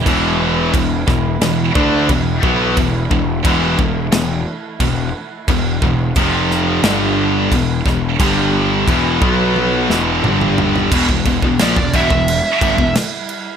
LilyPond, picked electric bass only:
\new Staff \with { instrumentName = "Picked electric bass" } { \clef bass \time 4/4 \key e \phrygian \tempo 4 = 88 e,,4 e,,8 e,,8 e,,8 d,8 e,,8 b,,8 | e,,8 e,,8 e,,8 e,,8 e,,8 r8 e,,8 r8 | e,,8 e,,8 f,,4 g,,4 e,,8 e,,8 | g,,4 e,,8 b,,4 e,,8 g,,4 |
e,,16 e,,16 e,,16 e,,16 ais,,16 e,,16 e,,16 e,,8 r16 g,,16 e,,16 r4 | }